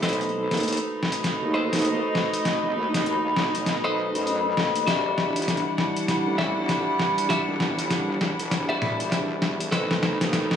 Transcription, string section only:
0.03 A3 D#4
4.87 E3 G3 D4 F#5
9.72 A3 D#4

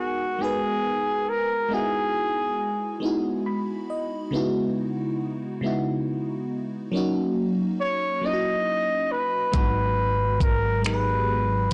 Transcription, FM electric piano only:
Already playing: G#3 B3 D#4 F#4 A#4
0.39 G#3 B3 D#4
0.43 F#4 B4
1.69 G#3 B3 D#4
1.73 E4 F#4
3.00 G#3 B3 D#4 E4
3.06 F#4
3.46 B5
3.90 D#5
4.31 C#3 G#3 B3 D#4
4.35 E4 F#4
5.61 C#3 G#3 B3 D#4
5.66 E4 F#4
6.92 F#3 A#3 C#4
6.96 D#4 F#4
8.21 F#3 A#3 C#4
8.26 D#4 E4
8.33 F#4
9.52 F#3 G#3 B3 D#4
9.57 F#4
10.82 F#3 G#3 B3 D#4
10.87 G4
10.94 G#4

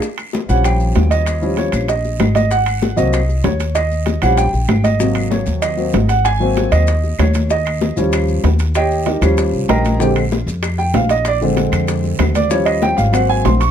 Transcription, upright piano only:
0.48 F3 G3 C#4 F#5
0.64 G5
1.11 D#5
1.42 F3 G3 C#4
1.58 C#5
1.89 D#5
2.35 D#5
2.51 F#5
2.96 F#3 A#3 C4 D#5
3.44 C#5
3.75 D#5
4.22 F3 G3 C#4 F#5
4.37 G5
4.84 D#5
4.99 C3 F#3 A#3
5.31 C#5
5.62 D#5
5.77 F#3 A#3 C4
6.09 F#5
6.25 G#5
6.40 F#3 A#3 C4
6.72 D#5
7.19 C#5
7.51 D#5
7.96 F3 G3 C#4
8.76 G4 C#5 D#5 G5
9.07 D#4 G4 A#4 D#5
9.21 F3 G3 C#4
9.69 A#4 D#5 G5 A#5
9.99 D3 G#3 C4 G4 G5
10.78 G5
10.95 F5
11.10 D#5
11.27 D5
11.41 D3 G#3 C4
12.35 D5
12.50 F3 G3 C#4 C#5
12.66 D#5
12.82 G5
12.97 F5
13.12 F#3 A#3 C4 F#5
13.29 G#5
13.45 C6
13.60 C#6

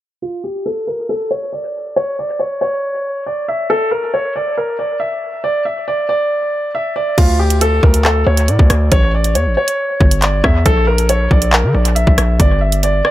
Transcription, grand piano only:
0.22 F4
0.44 G4
0.66 A4
0.87 A#4
1.09 A4
1.31 C#5
1.53 D5
1.96 C#5
2.19 D5
2.39 C#5
2.61 C#5
3.26 D5
3.48 E5
3.70 A4
3.91 A#4
4.14 C#5
4.36 D5
4.57 A#4
4.79 D5
5.00 E5
5.44 D5
5.65 E5
5.88 D5
6.09 D5
6.75 E5
6.96 D5
7.18 F4
7.39 G4
7.61 A4
7.83 A#4
8.05 A4
8.27 C#5
8.48 D5
8.92 C#5
9.14 D5
9.35 C#5
9.57 C#5
10.22 D5
10.44 E5
10.66 A4
10.87 A#4
11.09 C#5
11.31 D5
11.53 A#4
11.75 D5
11.95 E5
12.40 D5
12.61 E5
12.84 D5
13.05 D5

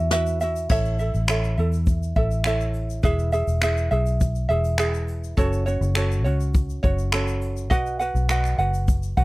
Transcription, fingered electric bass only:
Already playing: E2
0.70 A1
1.14 A1
1.58 E2
2.16 A1
3.04 E1
3.47 E1
3.91 B1
4.49 E1
5.38 F#1
5.81 F#1
6.25 C#2
6.84 F#1
7.71 B1
8.15 B1
8.58 F#1
9.17 B1

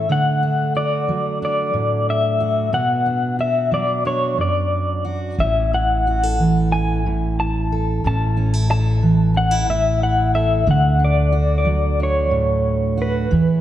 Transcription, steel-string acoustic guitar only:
0.09 D3 A3
0.43 D4
0.75 F#4
1.08 F#3
1.42 D4
1.73 A2
2.40 F#4
2.72 B2 B3
3.06 D4
3.39 F#4
3.71 F#3
4.05 D4
4.37 F#2
5.05 F#4
5.39 A2 C#4
5.73 E4
6.07 F#4
6.23 A4
6.39 E3
6.74 E4
7.06 A2
7.72 A4
8.05 A2 C#4
8.37 C#4
8.54 E4
8.71 A4
9.03 E3
9.34 C#4
9.51 E4
9.68 A2
10.35 A4
10.66 D3 A3
10.99 D4
11.32 F#4
11.65 F#3
12.00 D4
12.31 A2
12.97 F#4
13.31 E3 E4

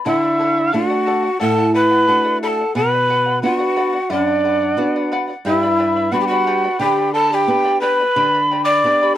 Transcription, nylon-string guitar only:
0.06 D3
0.74 A3 D4 F#4
1.41 A2
2.08 A3 D4 F#4
2.75 B2
3.43 B3 D4 F#4
4.10 F#2
4.77 B3 D4 F#4
5.45 G2
6.12 G3 B3 D4
6.79 D3
7.47 B3 D4 G4
8.16 D3
8.84 B3 D4 G4

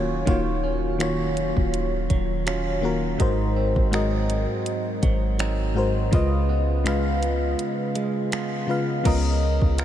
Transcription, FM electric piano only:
Already playing: D#3 A#3 F4 F#4 C#5
0.25 D#3 A#3 F4 F#4 C#5
0.99 D#3 A#3 F4 F#4 C#5
2.81 D#3 A#3 F4 F#4 A#4
3.18 G#2 G#3 F#4 A#4 C5
3.91 G#2 G#3 F#4 A#4
3.95 D#5
5.74 G#2 G#3 F#4 A#4 C5
6.11 C#3 G#3 F4 B4 D#5
6.84 C#3 G#3 F4 B4
6.88 F5
8.67 C#3 G#3 F4 B4 F5
9.03 C#3 G#3 B3 F4 A#4 D#5

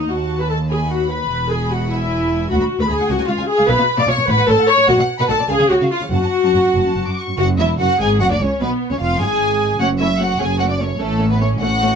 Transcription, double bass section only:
0.11 D#2
1.31 E1
2.51 D2
2.90 D2
3.10 C#2
3.29 C#2
3.68 B1
4.08 B1
4.28 A1
4.48 A1
4.89 B1
5.30 B1
5.49 C#2
5.69 C#2
6.11 F#1
6.54 F#1
6.75 F#1
6.96 F#1
7.38 F#1
7.59 E1
7.79 F#1
8.00 G#1
8.20 F#1
8.41 C#2
8.61 B1
9.01 F1
9.20 G#1
9.81 F#1
10.40 F#1
11.00 A1
11.62 A1

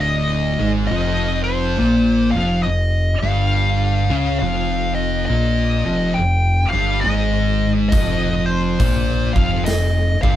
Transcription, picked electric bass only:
Already playing: D1
0.59 G#1
0.90 F1
1.79 A#1
2.34 F1
2.66 F1
3.22 G1
4.10 C#2
4.41 F1
5.29 A#1
5.85 F1
6.17 F1
6.73 G1
7.05 G#1
7.92 F1
8.80 A#1
9.36 F1
9.67 F1
10.23 G1

